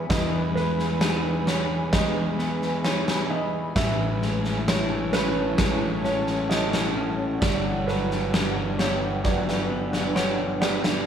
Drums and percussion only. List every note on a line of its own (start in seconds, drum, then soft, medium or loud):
0.10 kick medium
0.10 snare medium
0.57 snare soft
0.80 snare soft
1.01 snare medium
1.47 snare medium
1.93 kick medium
1.93 snare medium
2.39 snare soft
2.62 snare soft
2.84 snare medium
3.08 snare medium
3.76 kick medium
3.76 snare medium
4.22 snare soft
4.45 snare soft
4.68 snare medium
5.13 snare medium
5.58 kick medium
5.58 snare medium
6.05 snare soft
6.27 snare soft
6.51 snare medium
6.73 snare medium
7.42 kick medium
7.42 snare medium
7.88 snare soft
8.11 snare soft
8.34 snare medium
8.79 snare medium
9.24 kick medium
9.24 snare soft
9.49 snare soft
9.93 snare soft
10.16 snare medium
10.62 snare medium
10.84 snare medium